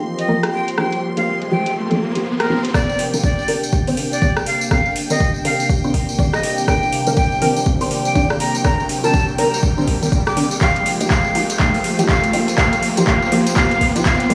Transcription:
Already playing: F3 A#3 C4 D#4 F4 G4 A4 C5 G5 C6, riser
0.19 D#5, closed hi-hat
0.28 F3 A#3 D#4 A#4
0.43 cross-stick, closed hi-hat
0.53 G5
0.68 closed hi-hat
0.78 F3 A#3 D#4 G4 G5, cross-stick
0.92 closed hi-hat
1.17 F3 A#3 D#4 G4 F5, closed hi-hat
1.42 closed hi-hat
1.51 F3 A#3 D#4 G4 G5
1.66 closed hi-hat
1.91 F3 A#3 D#4 A4, closed hi-hat
2.15 F3 A#3 D#4 G4, closed hi-hat
2.40 A#4, cross-stick, closed hi-hat
2.49 F3 A#3 D#4 G4
2.65 closed hi-hat
2.74 C3 D#3 A#3 C4 D4 G4 A#4 D5 G5, kick, cross-stick, tambourine, riser
2.89 tambourine
2.99 open hi-hat
3.13 D#3 C4 D4 A#4, tambourine
3.24 D5, kick, tambourine
3.32 G4
3.39 tambourine
3.48 D#3 C4 D4 A#4, open hi-hat
3.63 tambourine
3.73 kick, tambourine
3.83 D#3 D5
3.87 C4 D4 C5, open hi-hat, tambourine
3.97 open hi-hat
4.12 D5, tambourine
4.22 D#3 C4 D4 D5, kick, tambourine
4.36 cross-stick, tambourine
4.46 F5, open hi-hat
4.61 tambourine
4.71 D#3 C4 D4 A#4 F5, kick, cross-stick, tambourine
4.85 tambourine
4.96 open hi-hat
5.10 D#3 C4 D4 A#4 D#5, tambourine
5.20 kick, tambourine
5.34 tambourine
5.45 D#3 C4 D4 A#4 F5, open hi-hat
5.60 tambourine
5.69 kick, tambourine
5.84 D#3 C4 D4 C5, tambourine
5.94 kick, open hi-hat
6.09 tambourine
6.18 D#3 C4 D4 D5, kick, tambourine
6.33 D#5, cross-stick, tambourine
6.43 open hi-hat
6.58 tambourine
6.68 D#3 C4 D4 A#4 G5, kick, cross-stick, tambourine
6.83 tambourine
6.93 open hi-hat
7.07 D#3 C4 D4 A#4, tambourine
7.17 G5, kick, tambourine
7.32 tambourine
7.41 D#3 C4 D4 A#4, open hi-hat
7.56 tambourine
7.66 kick, tambourine
7.81 D#3 C4 D4 C5, open hi-hat, tambourine
7.91 open hi-hat
8.05 G5, tambourine
8.15 D#3 C4 D4 D5, kick, tambourine
8.30 cross-stick, tambourine
8.40 A#5, open hi-hat
8.55 tambourine
8.64 D#3 C4 D4 A#4 A#5, kick, cross-stick, tambourine
8.80 tambourine
8.89 open hi-hat
9.04 D#3 C4 D4 A#4 A5, tambourine
9.14 kick, tambourine
9.28 tambourine
9.38 D#3 C4 D4 A#4 A#5, open hi-hat
9.54 tambourine
9.63 kick, tambourine
9.77 D#3 C4 D4 C5, tambourine
9.88 kick, open hi-hat
10.02 D#3 C4 D4 A#4, tambourine
10.12 kick, tambourine
10.27 D6, cross-stick, tambourine
10.36 D#3 C4 D4 A#4, open hi-hat
10.51 tambourine
10.61 F3 A#3 C4 D#4 F4 G4 F5, kick, clap, tambourine
10.76 C5, closed hi-hat, tambourine
10.86 open hi-hat
11.01 F3 A#3 D#4 G4, closed hi-hat, tambourine
11.10 F5, kick, clap, tambourine
11.24 tambourine
11.35 F3 A#3 D#4 G4, open hi-hat
11.50 closed hi-hat, tambourine
11.59 F3 A#3 D#4 G4 F5, kick, clap, tambourine
11.74 open hi-hat, tambourine
11.83 G5, open hi-hat
11.99 F3 A#3 D#4 G4, closed hi-hat, tambourine
12.09 F5, kick, clap, tambourine
12.24 closed hi-hat, tambourine
12.33 F3 A#3 D#4 G4, open hi-hat
12.48 closed hi-hat, tambourine
12.58 F3 A#3 D#4 G4 F5, kick, clap, tambourine
12.73 closed hi-hat, tambourine
12.83 open hi-hat
12.97 F3 A#3 D#4 G4, closed hi-hat, tambourine
13.07 F5, kick, clap
13.22 tambourine
13.32 F3 A#3 D#4 G4, open hi-hat
13.47 closed hi-hat, tambourine
13.56 F3 A#3 D#4 G4 F5, kick, clap, tambourine
13.71 closed hi-hat, tambourine
13.81 kick, open hi-hat
13.95 F3 A#3 D#4 G4, closed hi-hat, tambourine
14.05 F5, kick, clap, tambourine
14.20 closed hi-hat, tambourine
14.30 F3 A#3 D#4 G4, open hi-hat

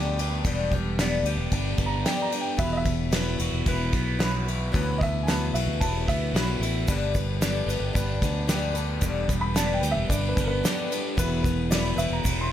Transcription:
Already playing: D2 G2 D3 G3 B3 D4 G4 D5
0.18 G3 B3 D4 G4, ride
0.45 E1 G2 D3 G3 B3 D4 G4, kick, ride
0.71 G3 B3 D4 G4, kick, ride
0.99 G2 D3 G3 B3 D4 G4, snare, ride
1.23 D2 D4 G4, ride
1.28 G3 B3
1.37 E1
1.50 G1 G3 B3 D4 G4, kick, ride
1.78 G1 B3, kick, ride
1.86 A#5
2.04 G2 D3 G3 B3 D4 G4 G5, snare, ride
2.22 A#5
2.31 G3 B3 D4 G4, ride
2.41 G5
2.57 E1 E2 E3 F#3 B3 E4 B4 E5, kick, ride
2.72 D#5
2.77 E5
2.84 B3 E4 B4, kick, ride
3.11 E3 F#3 B3 E4 B4, snare, ride
3.38 E1 B3 E4 F#4 B4, ride
3.52 E1
3.66 E1 F#3 B3 E4 B4, kick, ride
3.93 B1 B3, kick, ride
4.19 E3 F#3 B3 E4 F#4 B4, snare, ride
4.46 B3 E4 B4, ride
4.72 D2 E3 F#3 B3 E4 B4, kick, ride
4.76 E2
4.98 E4 B4 D#5, kick, ride
5.03 B3 E5
5.23 G#5 A5
5.27 E3 F#3 B3 E4 B4, snare, ride
5.54 B1 E4 F#4 B4 E5, ride
5.58 B3
5.67 D2
5.80 E1 F#3 B3 E4 B4 A5, kick, ride
6.08 D2 B3 E5, kick, ride
6.33 B1 E3 F#3 B3 E4 F#4 B4, snare, ride
6.60 A1 B4, ride
6.64 B3 E4
6.88 G1 G2 D3 G3 B3 D4 B4, kick, ride, shaker
7.14 G3 B3 D4 B4, kick, ride, shaker
7.41 G2 D3 G3 B3 D4 B4, snare, ride, shaker
7.67 G1 B3 D4 G4 B4, ride, shaker
7.71 G3
7.80 G1
7.93 G1 G3 B3 D4 B4, kick, ride, shaker
8.21 D2 B3, kick, ride, shaker
8.47 G2 D3 G3 B3 D4 G4 B4, snare, ride, shaker
8.73 G3 B3 D4 B4, ride, shaker
9.01 E1 G2 D3 G3 B3 D4 B4, kick, ride, shaker
9.28 G3 B3 D4 B4, kick, ride, shaker
9.41 B5
9.54 G2 D3 G3 B3 D4 B4 A5, snare, ride, shaker
9.73 G5
9.80 D2 G3 B3 D4 G4 B4, ride, shaker
9.91 E1 E5
10.06 G1 G3 B3 D4 B4 D5, kick, ride
10.12 shaker
10.29 B4
10.37 G1 B3, kick, ride, shaker
10.44 A#4 B4
10.63 G2 D3 G3 B3 D4 G4 B4, snare, ride, shaker
10.90 G3 B3 D4 B4, ride, shaker
11.17 E1 E2 E3 F#3 B3 E4 B4, kick, ride, shaker
11.43 B3 E4 B4, kick, ride, shaker
11.71 E3 F#3 B3 E4 B4 D5, snare, ride, shaker
11.96 E1 B3 E4 F#4 B4 E5, ride, shaker
12.10 E1 A#5
12.23 E1 F#3 B3 E4 B4, kick, ride, shaker
12.41 C6

